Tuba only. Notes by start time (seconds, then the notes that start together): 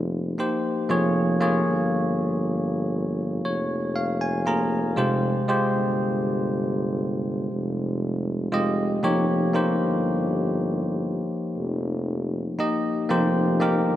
Already playing: F1
0.89 F1
1.65 G1
3.44 F1
4.97 F1
5.73 G1
7.51 F1
8.52 F1
9.03 F1
9.79 G1
11.57 F1
13.10 F1
13.86 G1